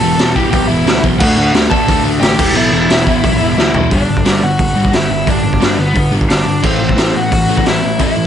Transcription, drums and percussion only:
0.19 snare, open hi-hat
0.36 kick
0.53 kick, open hi-hat
0.87 snare, open hi-hat
1.04 kick
1.20 kick, crash
1.54 snare, open hi-hat
1.71 kick
1.88 kick, open hi-hat
2.22 snare, open hi-hat
2.39 kick, crash
2.90 snare, open hi-hat
3.07 kick
3.24 kick, open hi-hat
3.59 snare
3.74 floor tom
3.91 kick, open hi-hat
4.17 kick
4.25 snare, open hi-hat
4.59 kick, open hi-hat
4.85 kick
4.93 snare, open hi-hat
5.27 kick, open hi-hat
5.53 kick
5.62 snare, open hi-hat
5.96 kick, open hi-hat
6.21 kick
6.30 snare, open hi-hat
6.64 kick, crash
6.89 kick
6.98 snare, open hi-hat
7.32 kick, open hi-hat
7.57 kick
7.66 snare, open hi-hat
7.99 kick, open hi-hat

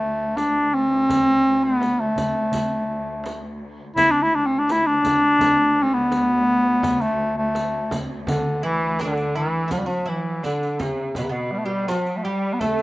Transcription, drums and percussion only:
0.37 riq, darbuka tek, frame drum
1.09 riq, darbuka dum, frame drum
1.81 riq, darbuka tek, frame drum
2.16 riq, darbuka dum, frame drum
2.52 riq, darbuka dum, frame drum
2.89 darbuka ka
3.24 riq, darbuka tek, frame drum
3.60 darbuka ka
3.96 riq, darbuka dum, frame drum
4.68 riq, darbuka tek, frame drum
5.04 riq, darbuka dum, frame drum
5.39 riq, darbuka dum, frame drum
6.12 riq, darbuka tek, frame drum
6.83 riq, frame drum, darbuka dum
7.01 riq
7.55 riq, darbuka tek, frame drum
7.91 riq, darbuka dum, frame drum
8.27 riq, frame drum, darbuka dum
8.99 riq, darbuka tek, frame drum
9.17 riq
9.71 riq, darbuka dum, frame drum
9.89 riq, darbuka ka
10.43 riq, darbuka tek, frame drum
10.63 riq
10.80 riq, frame drum, darbuka dum
11.15 riq, frame drum, darbuka dum
11.88 riq, darbuka tek, frame drum
12.06 riq
12.25 riq
12.61 riq, frame drum, darbuka dum
12.79 riq

